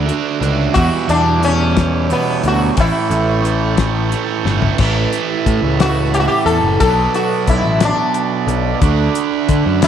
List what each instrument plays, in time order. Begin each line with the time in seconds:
Already playing: transistor combo organ F#4 E5 D6
0.06 distorted electric guitar D3 A3 D4, closed hi-hat
0.40 picked electric bass C#2, distorted electric guitar A3 D4, closed hi-hat
0.73 distorted electric guitar E2 B2 E3, picked electric bass E2, transistor combo organ G3, sitar F#4, kick, closed hi-hat
1.07 picked electric bass E2, distorted electric guitar B2 E3, sitar D4, closed hi-hat
1.40 distorted electric guitar E2 B2 E3, closed hi-hat
1.44 sitar C#4
1.75 distorted electric guitar B2 E3, kick, snare, closed hi-hat
2.08 distorted electric guitar E2 B2 E3, closed hi-hat
2.13 sitar B3
2.42 picked electric bass D2, distorted electric guitar B2 E3, closed hi-hat
2.48 sitar F#4
2.76 picked electric bass A1, distorted electric guitar A2 E3 A3, transistor combo organ A4 G5 C#6, kick, closed hi-hat
2.80 sitar E4
3.09 picked electric bass A1, distorted electric guitar E3 A3, closed hi-hat
3.42 distorted electric guitar A2 E3 A3, closed hi-hat
3.76 distorted electric guitar E3 A3, kick, snare, closed hi-hat
4.10 distorted electric guitar A2 E3 A3, closed hi-hat
4.44 picked electric bass G1, distorted electric guitar E3 A3, snare
4.62 floor tom
4.78 picked electric bass A1, distorted electric guitar A2 E3, transistor combo organ A4 E5 B5, kick, crash
4.82 distorted electric guitar A3
5.13 closed hi-hat
5.46 picked electric bass A2, kick, closed hi-hat
5.62 picked electric bass C#2
5.80 sitar F#4, snare, closed hi-hat
6.14 sitar G4, closed hi-hat
6.20 sitar F#4
6.28 sitar G4
6.46 picked electric bass E2, sitar A4, closed hi-hat
6.62 picked electric bass F#1
6.80 picked electric bass B1, distorted electric guitar B2 F#3 B3, sitar A4, transistor combo organ D5, kick, closed hi-hat
7.14 sitar F#4, closed hi-hat
7.47 picked electric bass B1, sitar E4, kick, closed hi-hat
7.64 picked electric bass A1
7.80 snare, closed hi-hat
7.85 sitar D4
8.14 closed hi-hat
8.47 picked electric bass B1, closed hi-hat
8.81 picked electric bass D2, distorted electric guitar D3 A3, transistor combo organ F#5 B5, kick, closed hi-hat
8.86 distorted electric guitar D4
9.15 closed hi-hat
9.49 picked electric bass D3, kick, closed hi-hat
9.66 picked electric bass F#2
9.82 sitar E4, snare, closed hi-hat